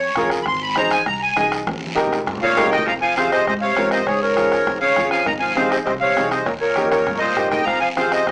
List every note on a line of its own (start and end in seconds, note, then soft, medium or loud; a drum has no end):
0.00 0.11 F2 loud
0.00 0.30 C#5 loud
0.16 0.41 F2 medium
0.16 0.38 F4 medium
0.16 0.38 G#4 medium
0.16 0.38 A#4 medium
0.16 bombo low medium
0.16 bombo rim medium
0.16 high conga medium
0.16 low conga medium
0.16 short guiro medium
0.30 bombo rim medium
0.30 short guiro medium
0.42 0.94 G#1 loud
0.42 0.45 B5 medium
0.42 bombo low medium
0.42 bombo rim medium
0.42 high conga soft
0.42 long guiro medium
0.47 0.62 C6 loud
0.62 0.77 B5 medium
0.76 0.98 D#4 medium
0.76 0.98 G#4 medium
0.76 0.98 C5 medium
0.76 0.92 A#5 loud
0.76 bombo rim medium
0.76 high conga medium
0.76 short guiro medium
0.91 1.06 G#5 loud
0.91 bombo rim medium
0.91 short guiro medium
1.06 1.31 C2 loud
1.06 1.21 A#5 loud
1.06 bombo low medium
1.06 bombo rim medium
1.06 high conga soft
1.06 long guiro medium
1.22 1.51 G#5 medium
1.36 1.61 C2 medium
1.36 1.58 D#4 medium
1.36 1.58 G#4 medium
1.36 1.58 D#5 medium
1.36 bombo rim medium
1.36 high conga medium
1.36 short guiro medium
1.52 bombo rim medium
1.52 short guiro medium
1.67 2.15 D#2 loud
1.67 bombo low medium
1.67 bombo rim medium
1.67 high conga loud
1.67 long guiro medium
1.87 high conga medium
1.95 2.17 D#4 medium
1.95 2.17 G4 medium
1.95 2.18 A#4 loud
1.95 bombo rim medium
1.95 low conga medium
1.95 short guiro medium
2.07 low conga medium
2.12 bombo rim medium
2.12 short guiro medium
2.17 low conga medium
2.26 2.39 G2 loud
2.26 bombo low medium
2.26 bombo rim medium
2.26 low conga medium
2.26 long guiro medium
2.38 low conga loud
2.42 2.56 A#2 medium
2.42 2.69 A#2 medium
2.42 2.70 C#5 medium
2.42 2.70 F5 loud
2.56 2.71 G2 medium
2.56 2.78 D#4 medium
2.56 2.78 G4 medium
2.56 2.78 A#4 medium
2.56 bombo rim medium
2.56 low conga medium
2.56 short guiro medium
2.67 2.85 D#3 medium
2.67 low conga medium
2.71 2.85 F2 medium
2.71 2.86 D#5 medium
2.71 2.86 G5 loud
2.71 bombo rim medium
2.71 short guiro medium
2.78 low conga loud
2.86 3.35 F2 medium
2.86 2.93 F3 medium
2.86 2.94 F5 medium
2.86 2.94 A#5 loud
2.86 bombo low medium
2.86 bombo rim medium
2.86 high conga soft
2.86 long guiro medium
3.01 3.15 F3 medium
3.01 3.14 F5 medium
3.01 3.16 G#5 loud
3.16 3.31 C3 medium
3.16 3.38 C4 medium
3.16 3.38 F4 medium
3.16 3.38 G#4 medium
3.16 3.31 C5 medium
3.16 3.30 F5 medium
3.16 bombo rim medium
3.16 high conga medium
3.16 short guiro medium
3.32 3.46 C3 medium
3.32 3.46 C5 medium
3.32 3.45 D#5 loud
3.32 bombo rim medium
3.32 short guiro medium
3.47 3.71 G#2 medium
3.47 3.54 C3 medium
3.47 3.54 C5 medium
3.47 3.54 D#5 loud
3.47 bombo low medium
3.47 bombo rim medium
3.47 high conga soft
3.47 low conga medium
3.47 long guiro medium
3.61 3.90 C3 medium
3.61 3.90 C#5 medium
3.61 3.89 F5 loud
3.77 4.01 G#2 medium
3.77 3.98 C4 medium
3.77 3.98 F4 medium
3.77 3.98 A#4 medium
3.77 bombo rim medium
3.77 high conga medium
3.77 low conga medium
3.77 short guiro medium
3.91 4.05 C3 medium
3.91 4.07 C5 medium
3.91 4.06 D#5 medium
3.91 bombo rim medium
3.91 short guiro medium
4.05 4.55 C#2 medium
4.05 4.20 G#2 medium
4.05 4.21 G#4 medium
4.05 4.20 C#5 medium
4.05 bombo low medium
4.05 bombo rim medium
4.05 long guiro medium
4.21 4.78 G#2 medium
4.21 4.78 A#4 medium
4.21 4.78 C#5 medium
4.36 4.57 C#4 medium
4.36 4.58 F4 medium
4.36 4.58 G#4 medium
4.36 bombo rim medium
4.36 high conga medium
4.36 short guiro medium
4.52 bombo rim medium
4.52 short guiro medium
4.67 4.91 F2 loud
4.67 bombo low medium
4.67 bombo rim medium
4.67 high conga soft
4.67 low conga medium
4.67 long guiro medium
4.81 5.10 C#3 medium
4.81 5.10 C#5 medium
4.81 5.09 F5 loud
4.96 5.21 F2 medium
4.96 5.18 C#4 medium
4.96 5.19 F4 medium
4.96 5.19 G#4 medium
4.96 bombo low medium
4.96 bombo rim medium
4.96 high conga medium
4.96 short guiro medium
5.10 5.25 F3 medium
5.10 5.26 F5 medium
5.10 5.27 G#5 loud
5.10 bombo rim medium
5.10 short guiro medium
5.26 5.75 G#1 loud
5.26 5.33 D#3 medium
5.26 5.34 D#5 medium
5.26 5.34 A#5 loud
5.26 bombo low medium
5.26 bombo rim medium
5.26 high conga soft
5.26 low conga medium
5.26 long guiro medium
5.39 5.55 F3 medium
5.39 5.54 F5 medium
5.39 5.56 G#5 medium
5.55 5.69 C3 medium
5.55 5.78 C4 medium
5.55 5.78 D#4 medium
5.55 5.78 G#4 medium
5.55 5.70 C5 medium
5.55 5.70 F5 medium
5.55 bombo rim medium
5.55 high conga medium
5.55 short guiro medium
5.69 5.77 C3 medium
5.69 5.78 C5 medium
5.69 5.76 D#5 medium
5.69 bombo rim medium
5.69 short guiro medium
5.85 6.11 C2 loud
5.85 5.93 C3 medium
5.85 5.94 C5 medium
5.85 5.92 D#5 medium
5.85 bombo low medium
5.85 bombo rim medium
5.85 high conga soft
5.85 low conga medium
5.85 long guiro medium
6.00 6.30 C3 medium
6.00 6.30 C#5 medium
6.00 6.29 F5 loud
6.16 6.41 C2 medium
6.16 6.37 C4 medium
6.16 6.38 D#4 medium
6.16 6.38 G#4 medium
6.16 bombo rim medium
6.16 high conga medium
6.16 low conga medium
6.16 short guiro medium
6.30 6.45 C3 medium
6.30 6.46 C5 medium
6.30 6.47 D#5 medium
6.30 bombo rim medium
6.30 short guiro medium
6.45 6.95 D#2 loud
6.45 6.52 A#2 medium
6.45 6.54 A#4 medium
6.45 6.52 C#5 medium
6.45 bombo low medium
6.45 bombo rim medium
6.45 high conga soft
6.45 long guiro medium
6.60 6.90 A#2 medium
6.60 6.90 A#4 medium
6.60 6.88 C#5 medium
6.76 6.98 A#3 medium
6.76 6.98 D#4 medium
6.76 6.98 G4 medium
6.76 bombo rim medium
6.76 high conga medium
6.76 short guiro medium
6.90 7.20 A#2 medium
6.90 7.20 A#4 medium
6.90 7.19 C#5 medium
6.90 bombo rim medium
6.90 high conga medium
6.90 short guiro medium
7.06 7.31 G2 medium
7.06 bombo low medium
7.06 bombo rim medium
7.06 low conga medium
7.06 long guiro medium
7.18 7.49 A#2 medium
7.18 7.49 C5 medium
7.18 7.48 D#5 medium
7.36 7.61 G2 medium
7.36 7.58 A#3 medium
7.36 7.58 D#4 medium
7.36 7.58 G4 medium
7.36 bombo low medium
7.36 bombo rim medium
7.36 low conga medium
7.36 short guiro medium
7.49 7.65 D#3 medium
7.49 7.66 D#5 medium
7.49 7.65 G5 medium
7.49 bombo rim medium
7.49 low conga loud
7.49 short guiro medium
7.63 8.15 F2 loud
7.63 7.80 F3 medium
7.63 7.80 F5 medium
7.63 7.79 A#5 loud
7.63 bombo low medium
7.63 long guiro medium
7.67 bombo rim medium
7.67 high conga soft
7.80 7.88 F3 medium
7.80 7.89 F5 medium
7.80 7.87 G#5 medium
7.96 8.11 C3 medium
7.96 8.18 C4 medium
7.96 8.18 F4 medium
7.96 8.18 G#4 medium
7.96 8.12 C5 medium
7.96 8.11 F5 medium
7.96 bombo rim medium
7.96 high conga medium
7.96 short guiro medium
8.11 8.26 C3 medium
8.11 8.27 C5 medium
8.11 8.26 D#5 medium
8.11 bombo rim medium
8.11 short guiro medium
8.27 8.31 G#2 loud
8.27 8.31 C3 medium
8.27 8.31 D#5 loud
8.27 bombo low medium
8.27 bombo rim medium
8.27 high conga soft
8.27 low conga medium
8.27 long guiro medium